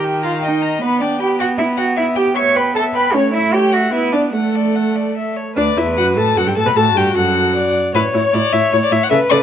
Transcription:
Already playing: viola D#3, cello G4, violin G5
0.04 violin G5
0.23 cello F4, violin F5 A#5
0.41 cello D#4, violin D#5 G5
0.62 violin A#5
0.81 cello B3, viola B3, violin B4 B5
1.00 cello D4, violin D5 G5
1.20 cello G4, violin G5 B5
1.39 cello F#4, violin F#5 G5
1.58 cello E4, violin E5 B5
1.77 cello F#4, violin F#5 G5
1.97 cello E4, violin E5
2.16 cello G4, violin G5
2.36 cello C#5, violin E5 C#6
2.55 cello B4, violin G5 B5
2.75 cello A4, violin E5 A5
2.94 cello B4, violin G5 B5
3.14 viola A3, cello C#4, violin C#5
3.33 cello E4, violin E5
3.53 cello G4, violin C#5 G5
3.72 cello F#4, violin E5 F#5
3.92 viola B3, cello E4, violin B4 E5
4.13 cello D4, violin D5
4.34 viola A3, cello A3, violin A4 F#5
4.55 violin D5
4.75 violin F#5
4.96 violin D5
5.17 violin E5
5.37 violin C#5
5.56 cello D2, viola D4, violin B4 D5
5.77 cello E2, viola E4, violin E5
5.97 cello F#2, viola F#4, violin F#5
6.17 cello A2, viola A4, violin A5
6.37 cello F#2, viola F#4, violin A4 F#5
6.46 cello G2, viola G4, violin G5
6.56 cello A2, viola A4, violin A5
6.66 cello B2, viola B4, violin B5
6.75 cello A2, violin F#4 A5, viola A4
6.94 cello G2, viola G4, violin G5
7.15 cello F#2, viola F#4, violin A4 F#5
7.55 violin D5
7.94 cello A2, viola E4, violin B4 C#5
8.14 cello A2, viola E4, violin C#5
8.33 cello A2, viola E4, violin D5
8.53 cello A2, viola E4, violin E5
8.72 cello A2, viola E4, violin C#5
8.84 violin D5
8.91 cello A2, viola E4, violin E5
9.03 violin F#5
9.10 cello C#3, viola A4, violin B4 E5
9.30 cello C#3, viola A4, violin D5

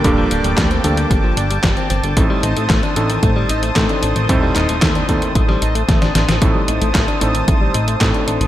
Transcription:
Already playing: analog synth pad A#3 G5 A5 D6
0.04 analog synth bass D1, electric grand piano G2 A#3 D4 G4 A4, clean electric guitar G3, kick, closed hi-hat
0.18 clean electric guitar F3
0.31 analog synth bass D1, clean electric guitar D4, closed hi-hat
0.44 analog synth bass D1, clean electric guitar G3, closed hi-hat
0.57 analog synth bass D2, clean electric guitar G3, kick, snare, clap, closed hi-hat
0.71 clean electric guitar C4, closed hi-hat
0.84 analog synth bass D2, electric grand piano G2 A#3 D4 G4 A4, clean electric guitar C4, closed hi-hat
0.97 clean electric guitar D3, closed hi-hat
1.11 analog synth bass G1, clean electric guitar G3, kick, closed hi-hat
1.24 clean electric guitar F3
1.37 analog synth bass G1, clean electric guitar D4, closed hi-hat
1.51 clean electric guitar G3, closed hi-hat
1.64 analog synth bass G1, clean electric guitar G3, kick, snare, clap, closed hi-hat
1.77 clean electric guitar C4, closed hi-hat
1.90 analog synth bass G1, clean electric guitar C4, closed hi-hat
2.04 analog synth bass G1, clean electric guitar D3, closed hi-hat
2.17 analog synth bass A1, electric grand piano A2 A3 C4 D#4 A4, clean electric guitar A3, analog synth pad C5 D#6, kick, closed hi-hat
2.30 clean electric guitar G3
2.43 analog synth bass A1, clean electric guitar D#4, closed hi-hat
2.57 analog synth bass A1, clean electric guitar A3, closed hi-hat
2.70 analog synth bass A1, clean electric guitar A3, kick, snare, clap, closed hi-hat
2.83 clean electric guitar D4, closed hi-hat
2.96 analog synth bass A1, electric grand piano A2 A3 C4 D#4 A4, clean electric guitar D4, closed hi-hat
3.10 clean electric guitar D#3, closed hi-hat
3.23 analog synth bass A1, clean electric guitar A3, kick, closed hi-hat
3.36 clean electric guitar G3
3.49 analog synth bass A1, clean electric guitar D#4, closed hi-hat
3.63 clean electric guitar A3, closed hi-hat
3.76 analog synth bass A2, electric grand piano A2 A3 C4 D#4 A4, clean electric guitar A3, kick, snare, clap, closed hi-hat
3.89 clean electric guitar D4, closed hi-hat
4.03 analog synth bass A1, clean electric guitar D4, closed hi-hat
4.16 analog synth bass A1, clean electric guitar D#3, closed hi-hat
4.29 analog synth bass D#1, electric grand piano A2 A3 C4 D#4 A4, clean electric guitar A3, kick, closed hi-hat
4.43 clean electric guitar G3
4.56 analog synth bass D#1, clean electric guitar D#4, clap, closed hi-hat
4.69 analog synth bass D#1, clean electric guitar A3, closed hi-hat
4.82 analog synth bass D#2, clean electric guitar A3, kick, snare, clap, closed hi-hat
4.95 clean electric guitar D4, closed hi-hat
5.09 analog synth bass D#2, electric grand piano A2 A3 C4 D#4 A4, clean electric guitar D4, kick, closed hi-hat
5.22 clean electric guitar D#3, closed hi-hat
5.35 analog synth bass A1, clean electric guitar A3, kick, closed hi-hat
5.49 clean electric guitar G3, snare
5.62 analog synth bass A1, clean electric guitar D#4, closed hi-hat
5.75 clean electric guitar A3, closed hi-hat
5.88 analog synth bass A1, clean electric guitar A3, kick, snare, closed hi-hat
6.02 clean electric guitar D4, snare, closed hi-hat
6.15 analog synth bass A1, clean electric guitar D4, snare, closed hi-hat
6.28 analog synth bass A1, clean electric guitar D#3, snare, closed hi-hat
6.42 analog synth bass A1, electric grand piano A2 A3 C4 D#4 A4, clean electric guitar A3, analog synth pad C5 A5 D#6, kick, closed hi-hat
6.55 clean electric guitar G3
6.68 analog synth bass A1, clean electric guitar D#4, closed hi-hat
6.82 analog synth bass A1, clean electric guitar A3, closed hi-hat
6.95 analog synth bass A1, clean electric guitar A3, kick, snare, clap, closed hi-hat
7.08 clean electric guitar D4, closed hi-hat
7.21 analog synth bass A1, electric grand piano A2 A3 C4 D#4 A4, clean electric guitar D4, closed hi-hat
7.35 clean electric guitar D#3, closed hi-hat
7.48 analog synth bass A1, clean electric guitar A3, kick, closed hi-hat
7.61 clean electric guitar G3
7.74 analog synth bass A1, clean electric guitar D#4, closed hi-hat
7.88 clean electric guitar A3, closed hi-hat
8.01 analog synth bass A2, electric grand piano A2 A3 C4 D#4 A4, clean electric guitar A3, kick, snare, clap, closed hi-hat
8.14 clean electric guitar D4, closed hi-hat
8.27 analog synth bass A1, clean electric guitar D4, closed hi-hat
8.41 analog synth bass A1, clean electric guitar D#3, closed hi-hat

